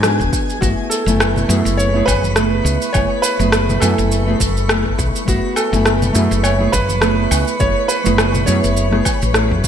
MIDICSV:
0, 0, Header, 1, 6, 480
1, 0, Start_track
1, 0, Key_signature, 3, "minor"
1, 0, Tempo, 582524
1, 507, Time_signature, 4, 2, 24, 8
1, 7975, End_track
2, 0, Start_track
2, 0, Title_t, "Synth texture"
2, 0, Program_c, 0, 99
2, 0, Note_on_c, 0, 68, 77
2, 0, Note_on_c, 0, 80, 77
2, 502, Note_on_c, 0, 85, 78
2, 503, Note_on_c, 0, 71, 82
2, 515, Note_off_c, 0, 80, 0
2, 518, Note_off_c, 0, 68, 0
2, 7975, Note_off_c, 0, 71, 0
2, 7975, Note_off_c, 0, 85, 0
2, 7975, End_track
3, 0, Start_track
3, 0, Title_t, "Grand piano"
3, 0, Program_c, 1, 0
3, 501, Note_on_c, 1, 66, 92
3, 556, Note_off_c, 1, 66, 0
3, 738, Note_on_c, 1, 69, 90
3, 1462, Note_on_c, 1, 73, 101
3, 1484, Note_off_c, 1, 69, 0
3, 1694, Note_on_c, 1, 71, 100
3, 1712, Note_off_c, 1, 73, 0
3, 2387, Note_off_c, 1, 71, 0
3, 2411, Note_on_c, 1, 73, 101
3, 2655, Note_on_c, 1, 71, 113
3, 2666, Note_off_c, 1, 73, 0
3, 3132, Note_on_c, 1, 69, 93
3, 3155, Note_off_c, 1, 71, 0
3, 4066, Note_off_c, 1, 69, 0
3, 4350, Note_on_c, 1, 66, 89
3, 4582, Note_on_c, 1, 69, 97
3, 4595, Note_off_c, 1, 66, 0
3, 5301, Note_on_c, 1, 73, 100
3, 5326, Note_off_c, 1, 69, 0
3, 5541, Note_on_c, 1, 71, 103
3, 5551, Note_off_c, 1, 73, 0
3, 6261, Note_on_c, 1, 73, 104
3, 6285, Note_off_c, 1, 71, 0
3, 6495, Note_on_c, 1, 71, 102
3, 6511, Note_off_c, 1, 73, 0
3, 6948, Note_off_c, 1, 71, 0
3, 6972, Note_on_c, 1, 73, 100
3, 7906, Note_off_c, 1, 73, 0
3, 7975, End_track
4, 0, Start_track
4, 0, Title_t, "Nylon-string guitar"
4, 0, Program_c, 2, 24
4, 23, Note_on_c, 2, 56, 82
4, 28, Note_on_c, 2, 59, 72
4, 37, Note_on_c, 2, 62, 78
4, 41, Note_on_c, 2, 66, 88
4, 479, Note_off_c, 2, 56, 0
4, 482, Note_off_c, 2, 59, 0
4, 486, Note_off_c, 2, 62, 0
4, 488, Note_off_c, 2, 66, 0
4, 505, Note_on_c, 2, 57, 67
4, 510, Note_on_c, 2, 59, 54
4, 517, Note_on_c, 2, 64, 56
4, 525, Note_on_c, 2, 68, 70
4, 847, Note_off_c, 2, 57, 0
4, 850, Note_off_c, 2, 59, 0
4, 853, Note_off_c, 2, 64, 0
4, 857, Note_off_c, 2, 68, 0
4, 880, Note_on_c, 2, 57, 83
4, 885, Note_on_c, 2, 59, 77
4, 892, Note_on_c, 2, 64, 73
4, 899, Note_on_c, 2, 80, 94
4, 1201, Note_off_c, 2, 57, 0
4, 1204, Note_off_c, 2, 59, 0
4, 1207, Note_off_c, 2, 64, 0
4, 1210, Note_off_c, 2, 80, 0
4, 1219, Note_on_c, 2, 57, 93
4, 1227, Note_on_c, 2, 59, 82
4, 1234, Note_on_c, 2, 64, 81
4, 1240, Note_on_c, 2, 68, 93
4, 1564, Note_off_c, 2, 57, 0
4, 1568, Note_off_c, 2, 59, 0
4, 1572, Note_off_c, 2, 64, 0
4, 1575, Note_off_c, 2, 68, 0
4, 1593, Note_on_c, 2, 57, 91
4, 1597, Note_on_c, 2, 59, 82
4, 1607, Note_on_c, 2, 64, 86
4, 1614, Note_on_c, 2, 68, 103
4, 1672, Note_off_c, 2, 57, 0
4, 1674, Note_off_c, 2, 59, 0
4, 1679, Note_off_c, 2, 64, 0
4, 1682, Note_off_c, 2, 68, 0
4, 1938, Note_on_c, 2, 57, 80
4, 1945, Note_on_c, 2, 59, 71
4, 1951, Note_on_c, 2, 64, 75
4, 1958, Note_on_c, 2, 68, 94
4, 2397, Note_off_c, 2, 57, 0
4, 2400, Note_off_c, 2, 59, 0
4, 2402, Note_off_c, 2, 64, 0
4, 2407, Note_off_c, 2, 68, 0
4, 2420, Note_on_c, 2, 57, 66
4, 2427, Note_on_c, 2, 59, 59
4, 2437, Note_on_c, 2, 64, 60
4, 2442, Note_on_c, 2, 68, 67
4, 2765, Note_off_c, 2, 57, 0
4, 2768, Note_off_c, 2, 59, 0
4, 2774, Note_off_c, 2, 64, 0
4, 2776, Note_off_c, 2, 68, 0
4, 2799, Note_on_c, 2, 57, 90
4, 2803, Note_on_c, 2, 59, 80
4, 2811, Note_on_c, 2, 64, 78
4, 2818, Note_on_c, 2, 68, 101
4, 3120, Note_off_c, 2, 57, 0
4, 3122, Note_off_c, 2, 59, 0
4, 3126, Note_off_c, 2, 64, 0
4, 3130, Note_off_c, 2, 68, 0
4, 3138, Note_on_c, 2, 57, 90
4, 3144, Note_on_c, 2, 59, 83
4, 3155, Note_on_c, 2, 64, 89
4, 3163, Note_on_c, 2, 80, 101
4, 3484, Note_off_c, 2, 57, 0
4, 3487, Note_off_c, 2, 59, 0
4, 3493, Note_off_c, 2, 64, 0
4, 3496, Note_off_c, 2, 80, 0
4, 3512, Note_on_c, 2, 57, 94
4, 3519, Note_on_c, 2, 59, 86
4, 3526, Note_on_c, 2, 64, 86
4, 3535, Note_on_c, 2, 68, 100
4, 3591, Note_off_c, 2, 57, 0
4, 3595, Note_off_c, 2, 59, 0
4, 3598, Note_off_c, 2, 64, 0
4, 3603, Note_off_c, 2, 68, 0
4, 3853, Note_on_c, 2, 57, 76
4, 3860, Note_on_c, 2, 59, 73
4, 3867, Note_on_c, 2, 64, 73
4, 3872, Note_on_c, 2, 68, 88
4, 4314, Note_off_c, 2, 57, 0
4, 4318, Note_off_c, 2, 59, 0
4, 4321, Note_off_c, 2, 64, 0
4, 4324, Note_off_c, 2, 68, 0
4, 4326, Note_on_c, 2, 57, 70
4, 4335, Note_on_c, 2, 59, 61
4, 4343, Note_on_c, 2, 64, 57
4, 4348, Note_on_c, 2, 68, 76
4, 4678, Note_off_c, 2, 57, 0
4, 4682, Note_off_c, 2, 59, 0
4, 4686, Note_off_c, 2, 64, 0
4, 4689, Note_off_c, 2, 68, 0
4, 4714, Note_on_c, 2, 57, 94
4, 4721, Note_on_c, 2, 59, 82
4, 4725, Note_on_c, 2, 64, 80
4, 4735, Note_on_c, 2, 80, 94
4, 5038, Note_off_c, 2, 57, 0
4, 5041, Note_off_c, 2, 59, 0
4, 5043, Note_off_c, 2, 64, 0
4, 5048, Note_off_c, 2, 80, 0
4, 5049, Note_on_c, 2, 57, 94
4, 5058, Note_on_c, 2, 59, 82
4, 5066, Note_on_c, 2, 64, 82
4, 5071, Note_on_c, 2, 68, 108
4, 5400, Note_off_c, 2, 57, 0
4, 5404, Note_off_c, 2, 59, 0
4, 5408, Note_off_c, 2, 64, 0
4, 5411, Note_off_c, 2, 68, 0
4, 5424, Note_on_c, 2, 57, 91
4, 5432, Note_on_c, 2, 59, 87
4, 5439, Note_on_c, 2, 64, 83
4, 5442, Note_on_c, 2, 68, 103
4, 5508, Note_off_c, 2, 57, 0
4, 5512, Note_off_c, 2, 59, 0
4, 5515, Note_off_c, 2, 64, 0
4, 5517, Note_off_c, 2, 68, 0
4, 5768, Note_on_c, 2, 57, 81
4, 5778, Note_on_c, 2, 59, 75
4, 5783, Note_on_c, 2, 64, 74
4, 5789, Note_on_c, 2, 68, 85
4, 6232, Note_off_c, 2, 57, 0
4, 6237, Note_off_c, 2, 59, 0
4, 6239, Note_off_c, 2, 64, 0
4, 6242, Note_off_c, 2, 68, 0
4, 6255, Note_on_c, 2, 57, 62
4, 6261, Note_on_c, 2, 59, 58
4, 6265, Note_on_c, 2, 64, 58
4, 6274, Note_on_c, 2, 68, 72
4, 6602, Note_off_c, 2, 57, 0
4, 6605, Note_off_c, 2, 59, 0
4, 6607, Note_off_c, 2, 64, 0
4, 6612, Note_off_c, 2, 68, 0
4, 6624, Note_on_c, 2, 57, 85
4, 6633, Note_on_c, 2, 59, 85
4, 6638, Note_on_c, 2, 64, 79
4, 6648, Note_on_c, 2, 68, 100
4, 6953, Note_off_c, 2, 57, 0
4, 6957, Note_off_c, 2, 59, 0
4, 6960, Note_off_c, 2, 64, 0
4, 6964, Note_on_c, 2, 57, 91
4, 6965, Note_off_c, 2, 68, 0
4, 6971, Note_on_c, 2, 59, 86
4, 6976, Note_on_c, 2, 64, 86
4, 6984, Note_on_c, 2, 68, 99
4, 7317, Note_off_c, 2, 57, 0
4, 7320, Note_off_c, 2, 59, 0
4, 7323, Note_off_c, 2, 64, 0
4, 7327, Note_off_c, 2, 68, 0
4, 7340, Note_on_c, 2, 57, 91
4, 7345, Note_on_c, 2, 59, 81
4, 7350, Note_on_c, 2, 64, 86
4, 7359, Note_on_c, 2, 68, 98
4, 7425, Note_off_c, 2, 57, 0
4, 7428, Note_off_c, 2, 59, 0
4, 7430, Note_off_c, 2, 64, 0
4, 7435, Note_off_c, 2, 68, 0
4, 7684, Note_on_c, 2, 57, 79
4, 7694, Note_on_c, 2, 59, 71
4, 7701, Note_on_c, 2, 64, 69
4, 7710, Note_on_c, 2, 68, 92
4, 7975, Note_off_c, 2, 57, 0
4, 7975, Note_off_c, 2, 59, 0
4, 7975, Note_off_c, 2, 64, 0
4, 7975, Note_off_c, 2, 68, 0
4, 7975, End_track
5, 0, Start_track
5, 0, Title_t, "Fretless electric bass"
5, 0, Program_c, 3, 35
5, 0, Note_on_c, 3, 44, 77
5, 161, Note_on_c, 3, 28, 80
5, 174, Note_off_c, 3, 44, 0
5, 238, Note_off_c, 3, 28, 0
5, 511, Note_on_c, 3, 30, 94
5, 606, Note_off_c, 3, 30, 0
5, 876, Note_on_c, 3, 30, 98
5, 1178, Note_off_c, 3, 30, 0
5, 1227, Note_on_c, 3, 42, 93
5, 1324, Note_off_c, 3, 42, 0
5, 1361, Note_on_c, 3, 30, 91
5, 1660, Note_off_c, 3, 30, 0
5, 1709, Note_on_c, 3, 30, 95
5, 2141, Note_off_c, 3, 30, 0
5, 2181, Note_on_c, 3, 37, 85
5, 2281, Note_off_c, 3, 37, 0
5, 2431, Note_on_c, 3, 30, 91
5, 2526, Note_off_c, 3, 30, 0
5, 2796, Note_on_c, 3, 30, 92
5, 3098, Note_off_c, 3, 30, 0
5, 3148, Note_on_c, 3, 42, 100
5, 3245, Note_off_c, 3, 42, 0
5, 3281, Note_on_c, 3, 30, 92
5, 3580, Note_off_c, 3, 30, 0
5, 3632, Note_on_c, 3, 30, 103
5, 4063, Note_off_c, 3, 30, 0
5, 4108, Note_on_c, 3, 35, 93
5, 4204, Note_off_c, 3, 35, 0
5, 4349, Note_on_c, 3, 30, 99
5, 4445, Note_off_c, 3, 30, 0
5, 4719, Note_on_c, 3, 30, 98
5, 5020, Note_off_c, 3, 30, 0
5, 5069, Note_on_c, 3, 42, 97
5, 5165, Note_off_c, 3, 42, 0
5, 5200, Note_on_c, 3, 30, 94
5, 5500, Note_off_c, 3, 30, 0
5, 5546, Note_on_c, 3, 30, 102
5, 5980, Note_off_c, 3, 30, 0
5, 6026, Note_on_c, 3, 37, 90
5, 6124, Note_off_c, 3, 37, 0
5, 6269, Note_on_c, 3, 30, 94
5, 6365, Note_off_c, 3, 30, 0
5, 6644, Note_on_c, 3, 30, 96
5, 6942, Note_off_c, 3, 30, 0
5, 6987, Note_on_c, 3, 42, 97
5, 7084, Note_off_c, 3, 42, 0
5, 7120, Note_on_c, 3, 30, 91
5, 7420, Note_off_c, 3, 30, 0
5, 7602, Note_on_c, 3, 33, 80
5, 7840, Note_on_c, 3, 42, 83
5, 7852, Note_off_c, 3, 33, 0
5, 7917, Note_off_c, 3, 42, 0
5, 7975, End_track
6, 0, Start_track
6, 0, Title_t, "Drums"
6, 26, Note_on_c, 9, 37, 89
6, 31, Note_on_c, 9, 82, 39
6, 108, Note_off_c, 9, 37, 0
6, 113, Note_off_c, 9, 82, 0
6, 164, Note_on_c, 9, 36, 54
6, 171, Note_on_c, 9, 82, 28
6, 246, Note_off_c, 9, 36, 0
6, 254, Note_off_c, 9, 82, 0
6, 270, Note_on_c, 9, 36, 94
6, 274, Note_on_c, 9, 82, 69
6, 353, Note_off_c, 9, 36, 0
6, 356, Note_off_c, 9, 82, 0
6, 411, Note_on_c, 9, 82, 31
6, 493, Note_off_c, 9, 82, 0
6, 512, Note_on_c, 9, 36, 115
6, 516, Note_on_c, 9, 82, 43
6, 594, Note_off_c, 9, 36, 0
6, 599, Note_off_c, 9, 82, 0
6, 754, Note_on_c, 9, 82, 78
6, 836, Note_off_c, 9, 82, 0
6, 887, Note_on_c, 9, 82, 30
6, 970, Note_off_c, 9, 82, 0
6, 992, Note_on_c, 9, 37, 93
6, 992, Note_on_c, 9, 77, 73
6, 997, Note_on_c, 9, 82, 40
6, 1074, Note_off_c, 9, 37, 0
6, 1074, Note_off_c, 9, 77, 0
6, 1079, Note_off_c, 9, 82, 0
6, 1122, Note_on_c, 9, 64, 76
6, 1132, Note_on_c, 9, 82, 29
6, 1204, Note_off_c, 9, 64, 0
6, 1214, Note_off_c, 9, 82, 0
6, 1235, Note_on_c, 9, 82, 72
6, 1318, Note_off_c, 9, 82, 0
6, 1370, Note_on_c, 9, 82, 34
6, 1452, Note_off_c, 9, 82, 0
6, 1479, Note_on_c, 9, 82, 45
6, 1562, Note_off_c, 9, 82, 0
6, 1711, Note_on_c, 9, 36, 97
6, 1711, Note_on_c, 9, 77, 71
6, 1716, Note_on_c, 9, 82, 71
6, 1793, Note_off_c, 9, 36, 0
6, 1794, Note_off_c, 9, 77, 0
6, 1799, Note_off_c, 9, 82, 0
6, 1841, Note_on_c, 9, 63, 57
6, 1849, Note_on_c, 9, 82, 32
6, 1923, Note_off_c, 9, 63, 0
6, 1932, Note_off_c, 9, 82, 0
6, 1944, Note_on_c, 9, 37, 92
6, 1949, Note_on_c, 9, 82, 41
6, 2026, Note_off_c, 9, 37, 0
6, 2031, Note_off_c, 9, 82, 0
6, 2192, Note_on_c, 9, 82, 68
6, 2274, Note_off_c, 9, 82, 0
6, 2322, Note_on_c, 9, 82, 30
6, 2404, Note_off_c, 9, 82, 0
6, 2423, Note_on_c, 9, 77, 75
6, 2428, Note_on_c, 9, 82, 45
6, 2430, Note_on_c, 9, 36, 120
6, 2505, Note_off_c, 9, 77, 0
6, 2510, Note_off_c, 9, 82, 0
6, 2513, Note_off_c, 9, 36, 0
6, 2666, Note_on_c, 9, 82, 78
6, 2749, Note_off_c, 9, 82, 0
6, 2803, Note_on_c, 9, 82, 31
6, 2886, Note_off_c, 9, 82, 0
6, 2904, Note_on_c, 9, 37, 96
6, 2908, Note_on_c, 9, 82, 41
6, 2986, Note_off_c, 9, 37, 0
6, 2991, Note_off_c, 9, 82, 0
6, 3042, Note_on_c, 9, 63, 65
6, 3046, Note_on_c, 9, 64, 74
6, 3046, Note_on_c, 9, 82, 31
6, 3124, Note_off_c, 9, 63, 0
6, 3128, Note_off_c, 9, 64, 0
6, 3128, Note_off_c, 9, 82, 0
6, 3144, Note_on_c, 9, 77, 72
6, 3149, Note_on_c, 9, 82, 76
6, 3227, Note_off_c, 9, 77, 0
6, 3231, Note_off_c, 9, 82, 0
6, 3285, Note_on_c, 9, 82, 34
6, 3368, Note_off_c, 9, 82, 0
6, 3393, Note_on_c, 9, 82, 44
6, 3476, Note_off_c, 9, 82, 0
6, 3629, Note_on_c, 9, 36, 96
6, 3631, Note_on_c, 9, 82, 74
6, 3711, Note_off_c, 9, 36, 0
6, 3713, Note_off_c, 9, 82, 0
6, 3767, Note_on_c, 9, 82, 31
6, 3849, Note_off_c, 9, 82, 0
6, 3867, Note_on_c, 9, 37, 96
6, 3867, Note_on_c, 9, 77, 71
6, 3872, Note_on_c, 9, 82, 41
6, 3950, Note_off_c, 9, 37, 0
6, 3950, Note_off_c, 9, 77, 0
6, 3955, Note_off_c, 9, 82, 0
6, 4003, Note_on_c, 9, 36, 57
6, 4086, Note_off_c, 9, 36, 0
6, 4109, Note_on_c, 9, 36, 101
6, 4112, Note_on_c, 9, 82, 77
6, 4191, Note_off_c, 9, 36, 0
6, 4195, Note_off_c, 9, 82, 0
6, 4250, Note_on_c, 9, 82, 35
6, 4332, Note_off_c, 9, 82, 0
6, 4349, Note_on_c, 9, 36, 123
6, 4354, Note_on_c, 9, 82, 45
6, 4431, Note_off_c, 9, 36, 0
6, 4436, Note_off_c, 9, 82, 0
6, 4584, Note_on_c, 9, 77, 77
6, 4589, Note_on_c, 9, 82, 80
6, 4666, Note_off_c, 9, 77, 0
6, 4671, Note_off_c, 9, 82, 0
6, 4727, Note_on_c, 9, 82, 35
6, 4809, Note_off_c, 9, 82, 0
6, 4825, Note_on_c, 9, 37, 90
6, 4830, Note_on_c, 9, 82, 41
6, 4907, Note_off_c, 9, 37, 0
6, 4912, Note_off_c, 9, 82, 0
6, 4961, Note_on_c, 9, 64, 79
6, 4963, Note_on_c, 9, 82, 31
6, 5044, Note_off_c, 9, 64, 0
6, 5046, Note_off_c, 9, 82, 0
6, 5068, Note_on_c, 9, 82, 81
6, 5150, Note_off_c, 9, 82, 0
6, 5204, Note_on_c, 9, 82, 34
6, 5287, Note_off_c, 9, 82, 0
6, 5305, Note_on_c, 9, 77, 74
6, 5310, Note_on_c, 9, 82, 46
6, 5388, Note_off_c, 9, 77, 0
6, 5392, Note_off_c, 9, 82, 0
6, 5548, Note_on_c, 9, 36, 103
6, 5549, Note_on_c, 9, 82, 78
6, 5631, Note_off_c, 9, 36, 0
6, 5632, Note_off_c, 9, 82, 0
6, 5679, Note_on_c, 9, 63, 64
6, 5682, Note_on_c, 9, 82, 32
6, 5762, Note_off_c, 9, 63, 0
6, 5764, Note_off_c, 9, 82, 0
6, 5781, Note_on_c, 9, 37, 95
6, 5786, Note_on_c, 9, 82, 44
6, 5864, Note_off_c, 9, 37, 0
6, 5869, Note_off_c, 9, 82, 0
6, 6024, Note_on_c, 9, 77, 67
6, 6029, Note_on_c, 9, 82, 74
6, 6107, Note_off_c, 9, 77, 0
6, 6112, Note_off_c, 9, 82, 0
6, 6160, Note_on_c, 9, 82, 34
6, 6242, Note_off_c, 9, 82, 0
6, 6262, Note_on_c, 9, 82, 47
6, 6267, Note_on_c, 9, 36, 122
6, 6345, Note_off_c, 9, 82, 0
6, 6349, Note_off_c, 9, 36, 0
6, 6504, Note_on_c, 9, 82, 80
6, 6586, Note_off_c, 9, 82, 0
6, 6639, Note_on_c, 9, 82, 33
6, 6721, Note_off_c, 9, 82, 0
6, 6743, Note_on_c, 9, 37, 91
6, 6743, Note_on_c, 9, 77, 70
6, 6748, Note_on_c, 9, 82, 39
6, 6825, Note_off_c, 9, 37, 0
6, 6825, Note_off_c, 9, 77, 0
6, 6830, Note_off_c, 9, 82, 0
6, 6868, Note_on_c, 9, 63, 59
6, 6877, Note_on_c, 9, 82, 29
6, 6879, Note_on_c, 9, 64, 80
6, 6951, Note_off_c, 9, 63, 0
6, 6959, Note_off_c, 9, 82, 0
6, 6961, Note_off_c, 9, 64, 0
6, 6982, Note_on_c, 9, 82, 77
6, 7065, Note_off_c, 9, 82, 0
6, 7120, Note_on_c, 9, 82, 34
6, 7203, Note_off_c, 9, 82, 0
6, 7225, Note_on_c, 9, 82, 44
6, 7307, Note_off_c, 9, 82, 0
6, 7354, Note_on_c, 9, 37, 28
6, 7437, Note_off_c, 9, 37, 0
6, 7460, Note_on_c, 9, 77, 68
6, 7464, Note_on_c, 9, 82, 69
6, 7465, Note_on_c, 9, 36, 107
6, 7542, Note_off_c, 9, 77, 0
6, 7547, Note_off_c, 9, 36, 0
6, 7547, Note_off_c, 9, 82, 0
6, 7597, Note_on_c, 9, 82, 34
6, 7680, Note_off_c, 9, 82, 0
6, 7699, Note_on_c, 9, 37, 85
6, 7704, Note_on_c, 9, 82, 39
6, 7782, Note_off_c, 9, 37, 0
6, 7786, Note_off_c, 9, 82, 0
6, 7839, Note_on_c, 9, 36, 58
6, 7921, Note_off_c, 9, 36, 0
6, 7945, Note_on_c, 9, 36, 102
6, 7945, Note_on_c, 9, 82, 72
6, 7975, Note_off_c, 9, 36, 0
6, 7975, Note_off_c, 9, 82, 0
6, 7975, End_track
0, 0, End_of_file